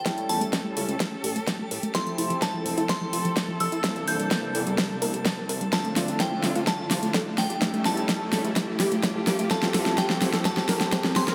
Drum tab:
HH |xxoxx-oxx-oxx-ox|xxoxx-oxx-oxx-ox|xxoxx-oxx-oxx-ox|xxoxx-oxx-oxx-ox|
SD |o---o---o---o---|o---o---o---o---|o---o---o---o---|o-o-o-o-o-o-o-o-|
BD |o---o---o---o---|o---o---o---o---|o---o---o---o---|o---o---o---o---|

HH |xxoxx-oxx-oxx-ox|xxoxx-oxx-oxx-ox|
SD |o-o-o-o-o-o-o-o-|oooooooooooooooo|
BD |o---o---o---o---|o---o---o---o---|